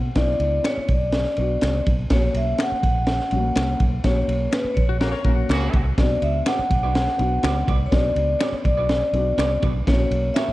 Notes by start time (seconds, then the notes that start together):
0.15 B1 B3 D4 E4 D5, kick, snare, ride
0.40 C#2, ride
0.64 C#5, finger snap, snare, ride
0.77 muted fingered electric bass stroke
0.88 B1 D5, kick, ride
1.12 snare, ride
1.25 snare
1.37 B1 B3 D4 F#4, ride
1.61 C2, finger snap, snare, ride
1.86 B1, kick, ride
2.10 A#1 A#3 C#4 F#4 C#5, kick, snare, ride
2.34 B1 E5, ride
2.58 F#5, finger snap, snare, ride
2.72 muted fingered electric bass stroke
2.83 A#1, kick, ride
3.07 snare, ride
3.11 F#5
3.20 snare
3.31 A#1 G3 C#4 F#4, ride
3.38 A#3
3.55 C2, finger snap, snare, ride
3.80 B1, kick, ride
4.04 A#1 A#3 C#4 F#4 C#5, kick, snare, ride
4.28 B1, ride
4.51 B4, finger snap, snare, ride
4.64 muted fingered electric bass stroke
4.74 A#1 C#5, kick, ride
4.89 F#4
5.01 C#3 A#3 F#4 A#4, snare, ride
5.12 A#4 C#5, snare
5.24 A#1 C#3 A#3 C#4 F#4 A#4, kick, ride
5.35 F#4
5.49 C#2 C#3 A#3 F#4, finger snap, snare, ride
5.73 C2, kick, ride
5.98 B1 B3 C#4 F#4 D5, kick, snare, ride
6.04 D4
6.22 C#2 E5, ride
6.46 D4 F#4 B4 D5 F#5, finger snap, snare, ride
6.59 muted fingered electric bass stroke
6.70 B1, kick, ride
6.83 D4 F#4 B4 D5
6.95 F#5, snare, ride
7.08 snare
7.18 B1 B3 D4 F#4, ride
7.43 C#2 D4 F#4 B4 D5, finger snap, snare, ride
7.67 C2 D4 F#4 B4 D5, kick, ride
7.86 C#5
7.91 B1 B3 D4 F#4 D5, kick, snare, ride
8.16 C#2, ride
8.39 D4 F#4 B4 C#5 D5, finger snap, snare, ride
8.52 muted fingered electric bass stroke
8.64 B1 D5, kick, ride
8.77 D4 F#4 B4 D5
8.89 snare, ride
9.13 B1 B3 C#4 F#4, ride
9.20 D4
9.38 C2 D4 F#4 B4 D5, finger snap, snare, ride
9.62 B1 D4 F#4 B4 D5, kick, ride
9.87 A#1 A#3 C#4 E4 C#5, kick, snare, ride
9.93 F#4
10.11 B1, ride
10.34 C#4 F#4 A#4 C#5 E5, finger snap, snare, ride
10.48 muted fingered electric bass stroke